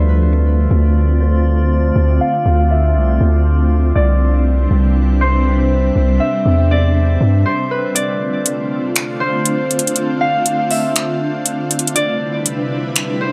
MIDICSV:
0, 0, Header, 1, 6, 480
1, 0, Start_track
1, 0, Tempo, 500000
1, 1879, Time_signature, 4, 2, 24, 8
1, 12790, End_track
2, 0, Start_track
2, 0, Title_t, "Harp"
2, 0, Program_c, 0, 46
2, 0, Note_on_c, 0, 71, 72
2, 0, Note_on_c, 0, 74, 97
2, 1155, Note_on_c, 0, 72, 79
2, 1212, Note_off_c, 0, 71, 0
2, 1724, Note_off_c, 0, 74, 0
2, 2120, Note_on_c, 0, 77, 78
2, 2597, Note_on_c, 0, 76, 74
2, 2654, Note_off_c, 0, 77, 0
2, 3055, Note_off_c, 0, 72, 0
2, 3796, Note_on_c, 0, 74, 109
2, 4251, Note_off_c, 0, 76, 0
2, 5002, Note_on_c, 0, 72, 82
2, 5569, Note_off_c, 0, 74, 0
2, 5951, Note_on_c, 0, 76, 74
2, 6443, Note_on_c, 0, 74, 81
2, 6902, Note_off_c, 0, 72, 0
2, 7158, Note_on_c, 0, 72, 74
2, 7402, Note_on_c, 0, 71, 70
2, 7460, Note_off_c, 0, 72, 0
2, 7605, Note_off_c, 0, 76, 0
2, 7629, Note_off_c, 0, 74, 0
2, 7633, Note_on_c, 0, 74, 106
2, 8834, Note_on_c, 0, 72, 85
2, 8892, Note_off_c, 0, 71, 0
2, 9406, Note_off_c, 0, 74, 0
2, 9799, Note_on_c, 0, 77, 80
2, 10275, Note_on_c, 0, 76, 77
2, 10333, Note_off_c, 0, 77, 0
2, 10734, Note_off_c, 0, 72, 0
2, 11477, Note_on_c, 0, 74, 114
2, 11929, Note_off_c, 0, 76, 0
2, 12680, Note_on_c, 0, 72, 86
2, 12790, Note_off_c, 0, 72, 0
2, 12790, Note_off_c, 0, 74, 0
2, 12790, End_track
3, 0, Start_track
3, 0, Title_t, "Synth texture"
3, 0, Program_c, 1, 99
3, 0, Note_on_c, 1, 60, 78
3, 0, Note_on_c, 1, 65, 69
3, 0, Note_on_c, 1, 74, 85
3, 3761, Note_off_c, 1, 65, 0
3, 3761, Note_off_c, 1, 74, 0
3, 3798, Note_on_c, 1, 76, 81
3, 3799, Note_on_c, 1, 71, 73
3, 5699, Note_off_c, 1, 71, 0
3, 5717, Note_on_c, 1, 72, 70
3, 7600, Note_off_c, 1, 76, 0
3, 7601, Note_off_c, 1, 60, 0
3, 7619, Note_off_c, 1, 72, 0
3, 7638, Note_on_c, 1, 62, 76
3, 7638, Note_on_c, 1, 72, 74
3, 7638, Note_on_c, 1, 77, 85
3, 11440, Note_off_c, 1, 62, 0
3, 11440, Note_off_c, 1, 72, 0
3, 11440, Note_off_c, 1, 77, 0
3, 11479, Note_on_c, 1, 60, 75
3, 11480, Note_on_c, 1, 71, 69
3, 11480, Note_on_c, 1, 76, 86
3, 12790, Note_off_c, 1, 60, 0
3, 12790, Note_off_c, 1, 71, 0
3, 12790, Note_off_c, 1, 76, 0
3, 12790, End_track
4, 0, Start_track
4, 0, Title_t, "Ambient pad"
4, 0, Program_c, 2, 92
4, 0, Note_on_c, 2, 50, 80
4, 0, Note_on_c, 2, 57, 77
4, 0, Note_on_c, 2, 60, 73
4, 0, Note_on_c, 2, 65, 90
4, 3760, Note_off_c, 2, 50, 0
4, 3760, Note_off_c, 2, 57, 0
4, 3760, Note_off_c, 2, 60, 0
4, 3760, Note_off_c, 2, 65, 0
4, 3799, Note_on_c, 2, 60, 72
4, 3799, Note_on_c, 2, 62, 74
4, 3800, Note_on_c, 2, 48, 78
4, 3800, Note_on_c, 2, 55, 73
4, 7601, Note_off_c, 2, 48, 0
4, 7601, Note_off_c, 2, 55, 0
4, 7601, Note_off_c, 2, 60, 0
4, 7601, Note_off_c, 2, 62, 0
4, 7639, Note_on_c, 2, 57, 73
4, 7639, Note_on_c, 2, 62, 74
4, 7639, Note_on_c, 2, 65, 91
4, 7640, Note_on_c, 2, 50, 83
4, 7640, Note_on_c, 2, 60, 75
4, 11440, Note_off_c, 2, 57, 0
4, 11441, Note_off_c, 2, 50, 0
4, 11441, Note_off_c, 2, 60, 0
4, 11441, Note_off_c, 2, 62, 0
4, 11441, Note_off_c, 2, 65, 0
4, 11479, Note_on_c, 2, 48, 83
4, 11479, Note_on_c, 2, 55, 75
4, 11480, Note_on_c, 2, 62, 75
4, 11480, Note_on_c, 2, 64, 95
4, 11480, Note_on_c, 2, 71, 76
4, 12790, Note_off_c, 2, 48, 0
4, 12790, Note_off_c, 2, 55, 0
4, 12790, Note_off_c, 2, 62, 0
4, 12790, Note_off_c, 2, 64, 0
4, 12790, Note_off_c, 2, 71, 0
4, 12790, End_track
5, 0, Start_track
5, 0, Title_t, "808-style bass"
5, 0, Program_c, 3, 38
5, 0, Note_on_c, 3, 38, 102
5, 650, Note_off_c, 3, 38, 0
5, 679, Note_on_c, 3, 38, 104
5, 1840, Note_off_c, 3, 38, 0
5, 1878, Note_on_c, 3, 38, 105
5, 2109, Note_off_c, 3, 38, 0
5, 2358, Note_on_c, 3, 38, 101
5, 2840, Note_on_c, 3, 36, 100
5, 2854, Note_off_c, 3, 38, 0
5, 3067, Note_off_c, 3, 36, 0
5, 3079, Note_on_c, 3, 38, 106
5, 3770, Note_off_c, 3, 38, 0
5, 3799, Note_on_c, 3, 36, 109
5, 4490, Note_off_c, 3, 36, 0
5, 4519, Note_on_c, 3, 36, 104
5, 5680, Note_off_c, 3, 36, 0
5, 5719, Note_on_c, 3, 36, 109
5, 5949, Note_off_c, 3, 36, 0
5, 6198, Note_on_c, 3, 40, 102
5, 6890, Note_off_c, 3, 40, 0
5, 6918, Note_on_c, 3, 43, 105
5, 7149, Note_off_c, 3, 43, 0
5, 12790, End_track
6, 0, Start_track
6, 0, Title_t, "Drums"
6, 7639, Note_on_c, 9, 42, 86
6, 7735, Note_off_c, 9, 42, 0
6, 8118, Note_on_c, 9, 42, 71
6, 8214, Note_off_c, 9, 42, 0
6, 8598, Note_on_c, 9, 42, 72
6, 8604, Note_on_c, 9, 26, 115
6, 8694, Note_off_c, 9, 42, 0
6, 8700, Note_off_c, 9, 26, 0
6, 9077, Note_on_c, 9, 42, 74
6, 9173, Note_off_c, 9, 42, 0
6, 9318, Note_on_c, 9, 42, 64
6, 9398, Note_off_c, 9, 42, 0
6, 9398, Note_on_c, 9, 42, 67
6, 9479, Note_off_c, 9, 42, 0
6, 9479, Note_on_c, 9, 42, 65
6, 9559, Note_off_c, 9, 42, 0
6, 9559, Note_on_c, 9, 42, 87
6, 9655, Note_off_c, 9, 42, 0
6, 10039, Note_on_c, 9, 42, 71
6, 10135, Note_off_c, 9, 42, 0
6, 10278, Note_on_c, 9, 46, 68
6, 10374, Note_off_c, 9, 46, 0
6, 10518, Note_on_c, 9, 42, 69
6, 10525, Note_on_c, 9, 26, 110
6, 10614, Note_off_c, 9, 42, 0
6, 10621, Note_off_c, 9, 26, 0
6, 10997, Note_on_c, 9, 42, 72
6, 11093, Note_off_c, 9, 42, 0
6, 11238, Note_on_c, 9, 42, 64
6, 11319, Note_off_c, 9, 42, 0
6, 11319, Note_on_c, 9, 42, 66
6, 11399, Note_off_c, 9, 42, 0
6, 11399, Note_on_c, 9, 42, 66
6, 11479, Note_off_c, 9, 42, 0
6, 11479, Note_on_c, 9, 42, 86
6, 11575, Note_off_c, 9, 42, 0
6, 11958, Note_on_c, 9, 42, 70
6, 12054, Note_off_c, 9, 42, 0
6, 12438, Note_on_c, 9, 42, 69
6, 12444, Note_on_c, 9, 26, 118
6, 12534, Note_off_c, 9, 42, 0
6, 12540, Note_off_c, 9, 26, 0
6, 12790, End_track
0, 0, End_of_file